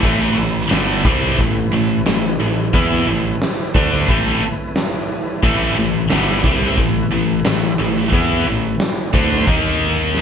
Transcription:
0.03 0.35 A1 medium
0.03 0.36 A2 medium
0.03 0.37 E3 loud
0.03 0.37 A3 loud
0.03 9.45 A3 medium
0.03 9.45 E4 medium
0.03 9.45 B4 medium
0.03 kick loud
0.03 crash loud
0.37 0.69 A1 medium
0.37 0.64 A2 medium
0.37 0.65 E3 medium
0.71 1.03 G1 medium
0.71 1.04 G2 medium
0.71 1.04 D3 loud
0.71 1.04 G3 loud
0.71 snare loud
0.71 open hi-hat medium
1.05 1.36 C2 medium
1.05 1.38 C3 medium
1.05 1.38 G3 loud
1.05 1.38 C4 loud
1.05 kick loud
1.39 1.70 A1 medium
1.39 1.66 A2 medium
1.39 1.66 E3 medium
1.39 kick medium
1.39 open hi-hat medium
1.72 2.04 A1 medium
1.72 1.99 A2 medium
1.72 1.99 E3 medium
2.06 2.38 A1 medium
2.06 2.33 A2 medium
2.06 2.33 E3 medium
2.06 snare loud
2.06 open hi-hat medium
2.40 2.71 A1 medium
2.40 2.67 A2 medium
2.40 2.67 E3 medium
2.74 3.05 E2 loud
2.74 3.06 E3 medium
2.74 3.07 B3 loud
2.74 3.07 E4 loud
2.74 kick loud
2.74 open hi-hat medium
3.07 3.39 A1 medium
3.07 3.34 A2 medium
3.07 3.35 E3 medium
3.42 snare loud
3.42 open hi-hat medium
3.75 4.06 D2 loud
3.75 4.07 D3 medium
3.75 4.08 A3 medium
3.75 4.08 D4 loud
3.75 kick loud
4.08 4.40 A1 loud
4.08 4.41 A2 medium
4.08 4.41 E3 loud
4.08 4.41 A3 loud
4.08 kick loud
4.08 open hi-hat medium
4.76 snare loud
4.76 open hi-hat medium
5.43 5.75 A1 loud
5.43 5.76 A2 loud
5.43 5.76 E3 loud
5.43 5.76 A3 loud
5.43 kick loud
5.43 open hi-hat medium
5.77 6.09 A1 medium
5.77 6.04 A2 medium
5.77 6.04 E3 medium
6.10 6.42 G1 loud
6.10 6.43 G2 loud
6.10 6.43 D3 medium
6.10 6.43 G3 loud
6.10 snare loud
6.10 open hi-hat medium
6.44 6.76 C2 loud
6.44 6.77 C3 loud
6.44 6.77 G3 medium
6.44 6.77 C4 loud
6.44 kick loud
6.77 7.10 A1 medium
6.77 7.05 A2 medium
6.77 7.05 E3 medium
6.77 kick medium
6.77 open hi-hat medium
7.11 7.44 A1 medium
7.11 7.39 A2 medium
7.11 7.39 E3 medium
7.45 7.77 A1 medium
7.45 7.72 A2 medium
7.45 7.73 E3 medium
7.45 snare loud
7.45 open hi-hat medium
7.79 8.11 A1 medium
7.79 8.06 A2 medium
7.79 8.06 E3 medium
8.12 8.44 E2 medium
8.12 8.46 E3 medium
8.12 8.46 B3 loud
8.12 8.46 E4 loud
8.12 kick medium
8.12 open hi-hat medium
8.47 8.79 A1 medium
8.47 8.74 A2 medium
8.47 8.74 E3 medium
8.80 snare loud
8.80 open hi-hat medium
9.13 9.45 D2 medium
9.13 9.47 D3 medium
9.13 9.47 A3 loud
9.13 9.47 D4 loud
9.13 kick loud
9.47 10.21 D#2 medium
9.47 10.21 D#3 loud
9.47 10.21 A#3 loud
9.47 10.21 D#4 loud
9.47 10.21 D#4 medium
9.47 10.21 A#4 medium
9.47 10.21 F5 medium
9.47 kick loud
9.47 open hi-hat medium
10.15 snare medium

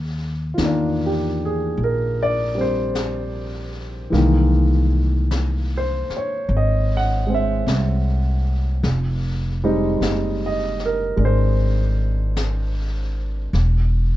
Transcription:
0.00 0.54 D#2 medium
0.54 1.72 E2 medium
0.54 4.12 D#3 soft
0.54 4.11 F4 soft
0.54 brush sweep soft
0.54 snare soft
0.54 hi-hat pedal medium
0.62 4.12 A#3 soft
0.62 4.16 D4 medium
1.06 1.40 G4 medium
1.45 1.80 G#4 medium
1.76 4.09 A#1 medium
1.76 brush sweep soft
1.84 2.19 A#4 medium
2.23 2.58 D5 medium
2.55 4.12 G3 soft
2.55 4.14 C4 soft
2.61 4.38 C5 medium
2.95 brush sweep soft
2.95 snare soft
2.95 hi-hat pedal soft
4.10 6.05 C2 medium
4.10 8.83 E3 medium
4.10 7.25 G#3 soft
4.10 8.84 A#3 soft
4.10 brush sweep soft
4.10 snare soft
4.15 8.85 D#3 medium
5.31 brush sweep soft
5.31 snare soft
5.31 hi-hat pedal medium
5.77 6.12 C5 medium
6.09 muted upright bass stroke soft
6.09 snare soft
6.17 6.51 C#5 medium
6.49 7.62 G#1 medium
6.49 brush sweep soft
6.57 6.91 D#5 medium
6.97 7.31 F#5 medium
7.27 8.84 G#3 soft
7.27 8.85 C4 soft
7.34 9.10 E5 medium
7.67 8.80 C2 medium
7.67 brush sweep soft
7.67 snare soft
7.67 hi-hat pedal soft
8.83 9.97 F1 medium
8.83 brush sweep soft
8.83 snare soft
9.64 13.54 G3 medium
9.64 11.15 G#3 soft
9.64 13.55 C4 soft
9.64 13.55 D#4 medium
10.01 11.14 F#1 medium
10.01 brush sweep soft
10.01 snare soft
10.01 hi-hat pedal soft
10.46 10.81 D#5 medium
10.79 snare soft
10.86 11.21 A#4 medium
11.16 13.49 G#1 medium
11.16 13.53 G#3 soft
11.16 13.54 D4 soft
11.16 brush sweep soft
11.25 12.35 C5 medium
12.36 brush sweep soft
12.36 snare soft
12.36 hi-hat pedal medium
13.53 14.16 E1 medium
13.53 brush sweep soft
13.53 snare soft

